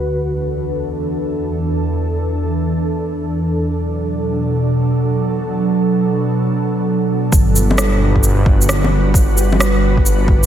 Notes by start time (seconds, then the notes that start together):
0.05 E2 E3 D4 A4
3.68 B2 F#3 A4
7.32 G1 G3 D4 F#4 B4, kick, shaker
7.56 shaker
7.71 low bongo
7.78 cross-stick, shaker
8.16 kick
8.23 shaker
8.46 kick
8.62 shaker
8.69 cross-stick, shaker
8.84 low bongo
9.14 kick, shaker
9.38 shaker
9.53 low bongo
9.60 cross-stick, shaker
9.97 kick
10.06 shaker
10.28 kick